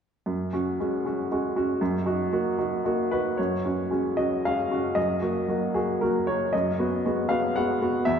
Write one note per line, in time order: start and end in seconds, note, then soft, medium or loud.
0.26 0.52 F#2 soft
0.53 0.76 C#4 soft
0.53 0.77 F#4 soft
0.80 1.03 G#3 soft
0.80 1.03 C#4 soft
0.80 1.03 F#4 soft
1.05 1.28 C#4 soft
1.05 1.28 F#4 soft
1.32 1.53 G#3 soft
1.32 1.54 C#4 soft
1.32 1.54 F#4 soft
1.56 1.78 C#4 soft
1.56 1.78 F#4 soft
1.81 2.05 F#2 medium
2.06 2.29 D#4 soft
2.06 2.29 F#4 soft
2.32 2.55 A#3 soft
2.32 2.55 D#4 soft
2.32 2.56 F#4 soft
2.59 2.82 D#4 soft
2.59 2.82 F#4 soft
2.85 3.09 A#3 soft
2.85 3.09 D#4 soft
2.85 3.09 F#4 soft
3.11 3.36 D#4 soft
3.11 3.36 F#4 soft
3.11 3.38 B4 medium
3.37 3.64 F#2 soft
3.37 4.17 C#5 soft
3.65 3.88 C#4 soft
3.65 3.89 F#4 soft
3.90 4.14 G#3 soft
3.90 4.15 C#4 soft
3.90 4.15 F#4 soft
4.17 4.41 C#4 soft
4.17 4.41 F#4 soft
4.17 4.43 D#5 medium
4.45 4.69 G#3 soft
4.45 4.69 C#4 soft
4.45 4.69 F#4 soft
4.45 4.97 F5 medium
4.71 4.94 C#4 soft
4.71 4.95 F#4 soft
4.95 5.21 F#2 soft
4.95 5.74 D#5 medium
5.22 5.46 A#3 soft
5.22 5.46 F#4 soft
5.48 5.72 F#3 soft
5.48 5.73 A#3 soft
5.48 5.73 F#4 soft
5.74 5.99 A#3 soft
5.74 5.99 F#4 soft
5.74 6.01 G#4 medium
6.01 6.25 F#3 soft
6.01 6.25 A#3 soft
6.01 6.25 F#4 soft
6.01 6.27 A#4 soft
6.27 6.51 A#3 soft
6.27 6.51 F#4 soft
6.27 6.52 C#5 medium
6.53 6.78 F#2 soft
6.53 7.30 D#5 medium
6.79 7.02 B3 soft
6.79 7.02 F#4 soft
7.06 7.28 G#3 soft
7.06 7.28 B3 soft
7.06 7.28 F#4 soft
7.29 7.53 B3 soft
7.29 7.53 F#4 soft
7.29 7.55 F5 medium
7.56 7.79 G#3 soft
7.56 7.79 B3 soft
7.56 7.79 F#4 soft
7.56 8.06 F#5 medium
7.81 8.04 B3 soft
7.81 8.04 F#4 soft
8.05 8.20 E2 soft
8.05 8.20 E5 medium